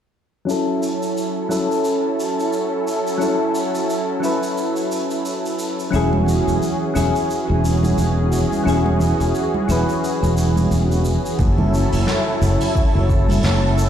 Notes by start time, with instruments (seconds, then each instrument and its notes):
0.45 synth keys F#3 C#4 E4, analog synth pad F#3 C#4 E4 A4
0.50 synth keys A4, shaker
0.83 shaker
1.03 shaker
1.18 shaker
1.49 synth keys F#3 C#4 E4 A4, shaker
1.72 shaker
1.85 shaker
2.20 shaker
2.40 shaker
2.53 shaker
2.88 shaker
3.07 shaker
3.18 synth keys F#3 C#4 E4, shaker
3.23 synth keys A4
3.55 shaker
3.75 shaker
3.90 shaker
4.20 synth keys F#3 C#4 E4, shaker
4.25 synth keys B4
4.43 shaker
4.58 shaker
4.77 shaker
4.92 shaker
5.11 shaker
5.26 shaker
5.46 shaker
5.59 shaker
5.80 shaker
5.90 fretless electric bass E1, analog synth pad E3 C#4 F#4 G#4, synth keys F#3 C#4 E4, shaker
5.96 synth keys G#4
6.13 high conga
6.26 low conga, shaker
6.47 fretless electric bass E1, shaker
6.62 shaker
6.94 fretless electric bass E1, synth keys F#3 C#4 E4 G#4, shaker
7.16 shaker
7.30 shaker
7.49 fretless electric bass E1
7.65 shaker
7.83 high conga, shaker
7.98 fretless electric bass E1, shaker
8.32 low conga, shaker
8.51 high conga, shaker
8.64 fretless electric bass E1, synth keys F#3 C#4 E4
8.68 synth keys G#4, shaker
8.86 high conga
8.99 low conga, shaker
9.20 fretless electric bass E1, shaker
9.35 shaker
9.54 high conga
9.66 fretless electric bass E1, synth keys F#3 C#4 E4, shaker
9.71 synth keys B4
9.89 shaker
10.04 shaker
10.22 fretless electric bass E1, shaker
10.37 shaker
10.56 high conga, shaker
10.71 fretless electric bass E1, shaker
10.92 shaker
11.05 low conga, shaker
11.26 shaker
11.38 fretless electric bass F#1, analog synth pad F#3 C#4 E4 A4, kick, open hi-hat, shaker
11.58 high conga, low conga
11.74 shaker
11.92 fretless electric bass F#1, open hi-hat, shaker
12.07 snare, shaker
12.41 fretless electric bass F#1, shaker
12.61 open hi-hat, shaker
12.75 kick, open hi-hat, shaker
12.95 fretless electric bass F#1
13.09 kick, shaker
13.29 open hi-hat, high conga, shaker
13.43 fretless electric bass F#1, snare, open hi-hat, shaker
13.78 shaker